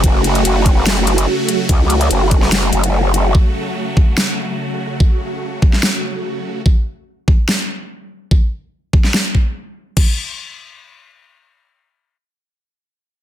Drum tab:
CC |----------------|----------------|----------------|----------------|
HH |x-xxx-x-x-xx--x-|x-xxx-x-x-xx--x-|----------------|----------------|
SD |--------o-------|-------oo-------|--------o-------|-------oo-------|
BD |o-----o---------|o-----o---------|o-----o---------|o-----o---------|

CC |----------------|----------------|x---------------|----------------|
HH |----------------|----------------|----------------|----------------|
SD |--------o-------|-------oo-------|----------------|----------------|
BD |o-----o---------|o-----o---o-----|o---------------|----------------|